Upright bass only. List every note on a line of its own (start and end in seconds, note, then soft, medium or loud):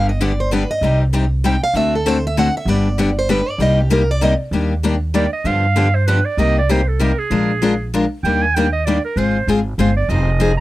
0.00 0.63 G1 medium
0.81 1.56 C2 medium
1.74 2.48 D2 medium
2.65 3.40 G1 medium
3.58 4.33 C2 medium
4.51 5.26 D#2 medium
5.44 6.19 G2 medium
6.37 7.12 C2 medium
7.30 8.05 A#1 medium
8.23 8.97 D#2 medium
9.16 9.41 G#1 medium
9.47 9.74 G#1 medium
9.78 10.04 G1 medium
10.08 10.60 F1 loud